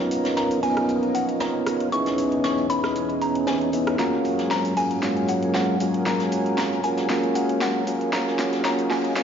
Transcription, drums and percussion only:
0.11 open hi-hat, shaker
0.25 snare, closed hi-hat
0.37 snare, closed hi-hat, shaker
0.51 open hi-hat
0.63 open hi-hat
0.77 cross-stick, closed hi-hat
0.89 closed hi-hat, shaker
1.03 closed hi-hat
1.15 open hi-hat, shaker
1.29 closed hi-hat
1.40 snare, closed hi-hat, shaker
1.66 cross-stick, open hi-hat, shaker
1.80 closed hi-hat
1.92 closed hi-hat, shaker
2.06 snare, open hi-hat
2.18 open hi-hat, shaker
2.32 closed hi-hat
2.44 snare, closed hi-hat, shaker
2.58 closed hi-hat
2.70 open hi-hat, shaker
2.84 cross-stick, snare, closed hi-hat
2.96 closed hi-hat, shaker
3.10 closed hi-hat
3.22 open hi-hat, shaker
3.35 closed hi-hat
3.47 snare, closed hi-hat, shaker
3.61 closed hi-hat
3.73 open hi-hat, shaker
3.87 cross-stick, closed hi-hat
3.99 snare, closed hi-hat, shaker
4.13 snare
4.24 open hi-hat, shaker
4.39 snare, closed hi-hat
4.51 snare, closed hi-hat, shaker
4.65 open hi-hat
4.77 open hi-hat
4.91 closed hi-hat
5.03 snare, closed hi-hat, shaker
5.17 closed hi-hat
5.28 open hi-hat, shaker
5.42 closed hi-hat
5.54 snare, closed hi-hat, shaker
5.80 open hi-hat, shaker
5.94 closed hi-hat
6.06 snare, closed hi-hat, shaker
6.20 snare, open hi-hat
6.31 open hi-hat, shaker
6.46 closed hi-hat
6.57 snare, closed hi-hat, shaker
6.72 closed hi-hat
6.84 open hi-hat, shaker
6.97 snare, closed hi-hat
7.09 snare, closed hi-hat, shaker
7.23 closed hi-hat
7.35 open hi-hat, shaker
7.49 closed hi-hat
7.61 snare, closed hi-hat, shaker
7.87 open hi-hat, shaker
8.01 closed hi-hat
8.13 snare, closed hi-hat, shaker
8.28 snare
8.39 snare, open hi-hat, shaker
8.52 snare, closed hi-hat
8.65 snare, closed hi-hat, shaker
8.79 open hi-hat
8.91 snare, open hi-hat
9.04 closed hi-hat
9.16 snare, closed hi-hat, shaker

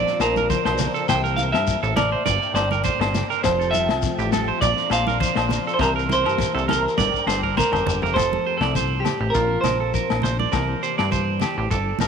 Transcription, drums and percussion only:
0.07 snare, shekere
0.20 snare, low agogo, shekere
0.36 high conga, shekere
0.50 kick, low conga, shekere
0.65 snare, low agogo, shekere
0.78 snare, low conga, shekere
0.95 shekere
1.09 kick, snare, low agogo, shekere
1.25 shekere
1.38 high conga, shekere
1.54 snare, low agogo, shekere
1.67 kick, shekere
1.83 shekere
1.97 snare, high conga, low conga, low agogo, shekere
2.26 kick, high conga, shekere
2.42 shekere
2.56 snare, low agogo, shekere
2.71 high conga, shekere
2.84 kick, low conga, shekere
3.01 snare, low agogo, shekere
3.15 snare, low conga, shekere
3.31 shekere
3.44 kick, snare, low agogo, shekere
3.61 shekere
3.74 high conga, shekere
3.89 snare, low agogo, shekere
4.02 kick, shekere
4.19 shekere
4.32 snare, high conga, low agogo, shekere
4.62 kick, high conga, shekere
4.77 snare, shekere
4.90 snare, low agogo, shekere
5.07 high conga, shekere
5.20 kick, low conga, shekere
5.35 snare, low agogo, shekere
5.49 snare, low conga, shekere
5.68 shekere
5.79 kick, snare, low agogo, shekere
5.99 shekere
6.09 high tom, high conga, shekere
6.26 low agogo, shekere
6.38 kick, snare, shekere
6.58 shekere
6.69 snare, high conga, low conga, low agogo, shekere
6.89 shekere
6.98 kick, snare, high conga, shekere
7.14 kick, shekere
7.27 snare, low agogo, shekere
7.44 kick
7.57 kick, snare, low conga, shekere
7.73 floor tom, low agogo, shekere
7.87 floor tom, low conga, shekere
8.02 floor tom, shekere
8.16 kick, snare, low agogo, shekere
8.33 high conga
8.61 snare, low agogo
8.75 kick, low conga, shekere
9.05 snare, low conga, low agogo, shekere
9.35 kick, shekere
9.64 snare, high conga, low conga, low agogo, shekere
9.94 kick, shekere
10.10 snare, low agogo
10.22 snare, low conga, shekere
10.40 high conga
10.53 kick, snare, low agogo, shekere
10.83 shekere
10.99 snare, low agogo
11.11 kick, low conga, shekere
11.40 snare, low conga, low agogo, shekere
11.71 kick, shekere
11.99 snare, high conga, low conga, low agogo, shekere

